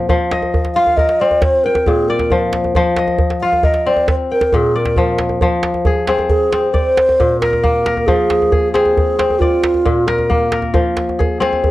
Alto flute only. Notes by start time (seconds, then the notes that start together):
0.75 F5
0.97 D#5
1.19 D5
1.42 C5
1.64 A#4
1.87 G#4
2.09 A#4
3.41 F5
3.64 D#5
3.87 D5
4.09 C5
4.32 A#4
4.55 G#4
4.77 A#4
6.29 G#4
6.73 C5
7.40 A#4
8.07 G#4
8.73 G#4
9.39 F4
10.07 A#4
11.63 G#4